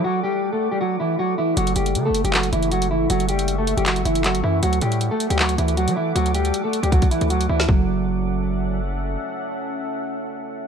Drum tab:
HH |----------------|xxxxx-xxxxxxxx--|xxxxx-xxxxxxxx--|xxxxx-xxxxxxxx--|
CP |----------------|--------x-------|--------x---x---|--------x-------|
SD |----------------|----------------|----------------|----------------|
BD |----------------|----------------|----------------|----------------|

HH |xxxxx-xxxxxxxx--|----------------|----------------|
CP |----------------|----------------|----------------|
SD |---------------o|----------------|----------------|
BD |--------oo------|o---------------|----------------|